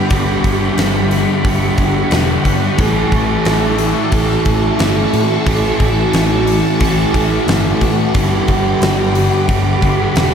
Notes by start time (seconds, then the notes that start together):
Already playing: G3 G4 F#5 B5
0.10 G1 G2 D3 G3 B3 D4 G4 C#6, kick, open hi-hat
0.44 G1, kick, open hi-hat
0.78 G1, snare, open hi-hat
1.11 open hi-hat
1.44 G1 G2 D3 G3 B3 D4 G4, kick, open hi-hat
1.78 G1 G2 D3 G3, kick, open hi-hat
2.11 E1 G2 D3 G3, snare, open hi-hat
2.45 G2, kick, open hi-hat
2.78 A1 A2 E3 A3 C#4 F#4 A4 E5 A5, kick, open hi-hat
3.12 A1, kick, open hi-hat
3.45 A1, snare, open hi-hat
3.78 open hi-hat
4.12 A1 A2 E3 A3 C#4 A4, kick, open hi-hat
4.45 A1 A2 E3 A3, kick, open hi-hat
4.79 G1 A2 E3 A3, snare, open hi-hat
5.13 A2, open hi-hat
5.46 A1 A2 E3 A3 C#4 A4, kick, open hi-hat
5.80 A1, kick, open hi-hat
6.13 A1, snare, open hi-hat
6.47 open hi-hat
6.79 A1 A2 E3 A3 C#4 A4, kick, open hi-hat
7.13 A1 A2 E3 A3, kick, open hi-hat
7.47 G1 A2 E3 A3, snare, open hi-hat
7.81 A2, kick, open hi-hat
8.14 G1 G2 D3 G3 B3 D4 G4 F#5 B5 D6, kick, open hi-hat
8.48 G1, kick, open hi-hat
8.82 G1, snare, open hi-hat
9.15 open hi-hat
9.48 G1 G2 D3 G3 B3 D4 G4, kick, open hi-hat
9.82 G1 G2 D3 G3, kick, open hi-hat
10.15 E1 G2 D3 G3, snare, open hi-hat